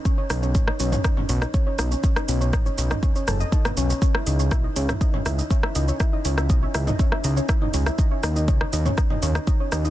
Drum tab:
HH |--o---o---o---o-|--o---o---o---o-|--o---o---o---o-|--o---o---o---o-|
SH |x-xxx-xxx-xxx-xx|xxxxxxxxxxxxxxxx|x-xxx-xxx-xxx-xx|x-xxx-xxx-xxx-xx|
SD |--r--r--r--r--r-|-r--r--r--r--r--|-r--r--r--r--r--|r--r--r--r--r--r|
T2 |-------o-o------|-------o--o--o--|-------o-o------|-------o-----o--|
BD |o---o---o---o---|o---o---o---o---|o---o---o---o---|o---o---o---o---|

HH |--o---o---o---o-|
SH |x-xxx-xxx-xxx-xx|
SD |--r--r--r--r--r-|
T2 |-------o-o------|
BD |o---o---o---o---|